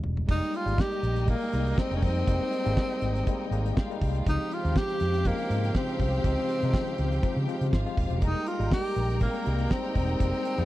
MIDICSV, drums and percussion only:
0, 0, Header, 1, 2, 480
1, 0, Start_track
1, 0, Key_signature, -4, "minor"
1, 0, Tempo, 495868
1, 275, Time_signature, 4, 2, 24, 8
1, 10309, End_track
2, 0, Start_track
2, 0, Title_t, "Drums"
2, 35, Note_on_c, 9, 43, 93
2, 132, Note_off_c, 9, 43, 0
2, 167, Note_on_c, 9, 43, 80
2, 264, Note_off_c, 9, 43, 0
2, 277, Note_on_c, 9, 36, 103
2, 279, Note_on_c, 9, 49, 93
2, 374, Note_off_c, 9, 36, 0
2, 375, Note_off_c, 9, 49, 0
2, 411, Note_on_c, 9, 42, 38
2, 508, Note_off_c, 9, 42, 0
2, 522, Note_on_c, 9, 42, 60
2, 619, Note_off_c, 9, 42, 0
2, 655, Note_on_c, 9, 42, 50
2, 752, Note_off_c, 9, 42, 0
2, 758, Note_on_c, 9, 36, 106
2, 769, Note_on_c, 9, 38, 121
2, 855, Note_off_c, 9, 36, 0
2, 866, Note_off_c, 9, 38, 0
2, 887, Note_on_c, 9, 42, 35
2, 983, Note_off_c, 9, 42, 0
2, 1000, Note_on_c, 9, 42, 56
2, 1097, Note_off_c, 9, 42, 0
2, 1125, Note_on_c, 9, 42, 46
2, 1131, Note_on_c, 9, 38, 38
2, 1222, Note_off_c, 9, 42, 0
2, 1228, Note_off_c, 9, 38, 0
2, 1235, Note_on_c, 9, 42, 60
2, 1238, Note_on_c, 9, 36, 96
2, 1332, Note_off_c, 9, 42, 0
2, 1335, Note_off_c, 9, 36, 0
2, 1365, Note_on_c, 9, 42, 37
2, 1462, Note_off_c, 9, 42, 0
2, 1480, Note_on_c, 9, 42, 60
2, 1576, Note_off_c, 9, 42, 0
2, 1611, Note_on_c, 9, 42, 53
2, 1708, Note_off_c, 9, 42, 0
2, 1721, Note_on_c, 9, 36, 105
2, 1722, Note_on_c, 9, 38, 114
2, 1818, Note_off_c, 9, 36, 0
2, 1819, Note_off_c, 9, 38, 0
2, 1854, Note_on_c, 9, 42, 33
2, 1951, Note_off_c, 9, 42, 0
2, 1959, Note_on_c, 9, 46, 74
2, 1960, Note_on_c, 9, 36, 105
2, 2056, Note_off_c, 9, 46, 0
2, 2057, Note_off_c, 9, 36, 0
2, 2087, Note_on_c, 9, 42, 40
2, 2183, Note_off_c, 9, 42, 0
2, 2202, Note_on_c, 9, 36, 112
2, 2202, Note_on_c, 9, 42, 81
2, 2299, Note_off_c, 9, 36, 0
2, 2299, Note_off_c, 9, 42, 0
2, 2443, Note_on_c, 9, 42, 60
2, 2540, Note_off_c, 9, 42, 0
2, 2574, Note_on_c, 9, 42, 49
2, 2670, Note_off_c, 9, 42, 0
2, 2681, Note_on_c, 9, 36, 113
2, 2683, Note_on_c, 9, 38, 121
2, 2778, Note_off_c, 9, 36, 0
2, 2779, Note_off_c, 9, 38, 0
2, 2805, Note_on_c, 9, 42, 33
2, 2902, Note_off_c, 9, 42, 0
2, 2917, Note_on_c, 9, 42, 57
2, 3014, Note_off_c, 9, 42, 0
2, 3054, Note_on_c, 9, 42, 53
2, 3060, Note_on_c, 9, 38, 33
2, 3151, Note_off_c, 9, 42, 0
2, 3157, Note_off_c, 9, 38, 0
2, 3163, Note_on_c, 9, 42, 67
2, 3165, Note_on_c, 9, 36, 98
2, 3260, Note_off_c, 9, 42, 0
2, 3262, Note_off_c, 9, 36, 0
2, 3410, Note_on_c, 9, 42, 58
2, 3506, Note_off_c, 9, 42, 0
2, 3541, Note_on_c, 9, 42, 54
2, 3638, Note_off_c, 9, 42, 0
2, 3649, Note_on_c, 9, 36, 105
2, 3651, Note_on_c, 9, 38, 125
2, 3745, Note_off_c, 9, 36, 0
2, 3748, Note_off_c, 9, 38, 0
2, 3786, Note_on_c, 9, 42, 35
2, 3883, Note_off_c, 9, 42, 0
2, 3887, Note_on_c, 9, 36, 95
2, 3887, Note_on_c, 9, 46, 69
2, 3983, Note_off_c, 9, 36, 0
2, 3984, Note_off_c, 9, 46, 0
2, 4017, Note_on_c, 9, 42, 45
2, 4114, Note_off_c, 9, 42, 0
2, 4128, Note_on_c, 9, 36, 113
2, 4129, Note_on_c, 9, 42, 83
2, 4225, Note_off_c, 9, 36, 0
2, 4226, Note_off_c, 9, 42, 0
2, 4265, Note_on_c, 9, 42, 34
2, 4362, Note_off_c, 9, 42, 0
2, 4370, Note_on_c, 9, 42, 52
2, 4467, Note_off_c, 9, 42, 0
2, 4502, Note_on_c, 9, 42, 47
2, 4599, Note_off_c, 9, 42, 0
2, 4605, Note_on_c, 9, 36, 109
2, 4611, Note_on_c, 9, 38, 115
2, 4702, Note_off_c, 9, 36, 0
2, 4708, Note_off_c, 9, 38, 0
2, 4733, Note_on_c, 9, 42, 33
2, 4830, Note_off_c, 9, 42, 0
2, 4840, Note_on_c, 9, 42, 67
2, 4937, Note_off_c, 9, 42, 0
2, 4975, Note_on_c, 9, 42, 54
2, 5072, Note_off_c, 9, 42, 0
2, 5079, Note_on_c, 9, 42, 61
2, 5085, Note_on_c, 9, 36, 92
2, 5176, Note_off_c, 9, 42, 0
2, 5182, Note_off_c, 9, 36, 0
2, 5210, Note_on_c, 9, 42, 38
2, 5307, Note_off_c, 9, 42, 0
2, 5332, Note_on_c, 9, 42, 59
2, 5429, Note_off_c, 9, 42, 0
2, 5456, Note_on_c, 9, 42, 54
2, 5553, Note_off_c, 9, 42, 0
2, 5563, Note_on_c, 9, 38, 116
2, 5565, Note_on_c, 9, 36, 109
2, 5660, Note_off_c, 9, 38, 0
2, 5662, Note_off_c, 9, 36, 0
2, 5700, Note_on_c, 9, 42, 39
2, 5797, Note_off_c, 9, 42, 0
2, 5804, Note_on_c, 9, 36, 103
2, 5806, Note_on_c, 9, 46, 70
2, 5901, Note_off_c, 9, 36, 0
2, 5903, Note_off_c, 9, 46, 0
2, 5930, Note_on_c, 9, 42, 40
2, 6027, Note_off_c, 9, 42, 0
2, 6043, Note_on_c, 9, 36, 111
2, 6046, Note_on_c, 9, 42, 73
2, 6140, Note_off_c, 9, 36, 0
2, 6143, Note_off_c, 9, 42, 0
2, 6280, Note_on_c, 9, 42, 61
2, 6377, Note_off_c, 9, 42, 0
2, 6410, Note_on_c, 9, 42, 49
2, 6506, Note_off_c, 9, 42, 0
2, 6520, Note_on_c, 9, 36, 115
2, 6530, Note_on_c, 9, 38, 125
2, 6616, Note_off_c, 9, 36, 0
2, 6627, Note_off_c, 9, 38, 0
2, 6644, Note_on_c, 9, 42, 33
2, 6741, Note_off_c, 9, 42, 0
2, 6758, Note_on_c, 9, 42, 61
2, 6855, Note_off_c, 9, 42, 0
2, 6891, Note_on_c, 9, 42, 50
2, 6898, Note_on_c, 9, 38, 37
2, 6988, Note_off_c, 9, 42, 0
2, 6994, Note_off_c, 9, 38, 0
2, 7000, Note_on_c, 9, 42, 66
2, 7001, Note_on_c, 9, 36, 102
2, 7097, Note_off_c, 9, 36, 0
2, 7097, Note_off_c, 9, 42, 0
2, 7248, Note_on_c, 9, 42, 60
2, 7344, Note_off_c, 9, 42, 0
2, 7369, Note_on_c, 9, 42, 55
2, 7466, Note_off_c, 9, 42, 0
2, 7482, Note_on_c, 9, 36, 105
2, 7482, Note_on_c, 9, 38, 112
2, 7579, Note_off_c, 9, 36, 0
2, 7579, Note_off_c, 9, 38, 0
2, 7616, Note_on_c, 9, 42, 39
2, 7712, Note_off_c, 9, 42, 0
2, 7719, Note_on_c, 9, 36, 105
2, 7720, Note_on_c, 9, 46, 73
2, 7816, Note_off_c, 9, 36, 0
2, 7816, Note_off_c, 9, 46, 0
2, 7844, Note_on_c, 9, 42, 44
2, 7941, Note_off_c, 9, 42, 0
2, 7954, Note_on_c, 9, 42, 84
2, 7957, Note_on_c, 9, 36, 107
2, 8051, Note_off_c, 9, 42, 0
2, 8054, Note_off_c, 9, 36, 0
2, 8193, Note_on_c, 9, 42, 60
2, 8289, Note_off_c, 9, 42, 0
2, 8328, Note_on_c, 9, 42, 47
2, 8425, Note_off_c, 9, 42, 0
2, 8436, Note_on_c, 9, 36, 106
2, 8442, Note_on_c, 9, 38, 121
2, 8533, Note_off_c, 9, 36, 0
2, 8539, Note_off_c, 9, 38, 0
2, 8564, Note_on_c, 9, 42, 30
2, 8660, Note_off_c, 9, 42, 0
2, 8674, Note_on_c, 9, 42, 66
2, 8771, Note_off_c, 9, 42, 0
2, 8809, Note_on_c, 9, 42, 53
2, 8815, Note_on_c, 9, 38, 38
2, 8905, Note_off_c, 9, 42, 0
2, 8910, Note_on_c, 9, 42, 67
2, 8911, Note_off_c, 9, 38, 0
2, 8915, Note_on_c, 9, 36, 99
2, 9006, Note_off_c, 9, 42, 0
2, 9012, Note_off_c, 9, 36, 0
2, 9041, Note_on_c, 9, 42, 38
2, 9137, Note_off_c, 9, 42, 0
2, 9156, Note_on_c, 9, 42, 58
2, 9252, Note_off_c, 9, 42, 0
2, 9280, Note_on_c, 9, 42, 50
2, 9377, Note_off_c, 9, 42, 0
2, 9398, Note_on_c, 9, 36, 98
2, 9398, Note_on_c, 9, 38, 127
2, 9494, Note_off_c, 9, 36, 0
2, 9495, Note_off_c, 9, 38, 0
2, 9634, Note_on_c, 9, 46, 66
2, 9636, Note_on_c, 9, 36, 98
2, 9731, Note_off_c, 9, 46, 0
2, 9733, Note_off_c, 9, 36, 0
2, 9765, Note_on_c, 9, 42, 41
2, 9862, Note_off_c, 9, 42, 0
2, 9876, Note_on_c, 9, 36, 108
2, 9877, Note_on_c, 9, 42, 86
2, 9973, Note_off_c, 9, 36, 0
2, 9974, Note_off_c, 9, 42, 0
2, 10012, Note_on_c, 9, 42, 35
2, 10109, Note_off_c, 9, 42, 0
2, 10116, Note_on_c, 9, 42, 61
2, 10213, Note_off_c, 9, 42, 0
2, 10241, Note_on_c, 9, 42, 51
2, 10309, Note_off_c, 9, 42, 0
2, 10309, End_track
0, 0, End_of_file